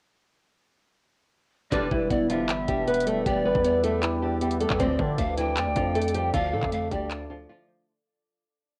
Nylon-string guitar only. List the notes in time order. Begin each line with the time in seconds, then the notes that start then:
1.72 D4 D5
1.91 E3 E4
2.30 F3 F4
2.68 G3 G4
2.88 B3 B4
3.07 A3 A4
3.26 G3 G4
3.45 B3 B4
3.84 A3 A4
4.22 G3 G4
4.41 G3 G4
4.61 A3 A4
4.80 C4 C5
4.99 D4 D5
5.38 E3 E4
5.76 F3 F4
5.95 A3 A4
6.14 G3 G4
6.34 F3 F4
6.53 A3 A4
6.91 G3 G4
7.30 F3 F4
7.49 F3 F4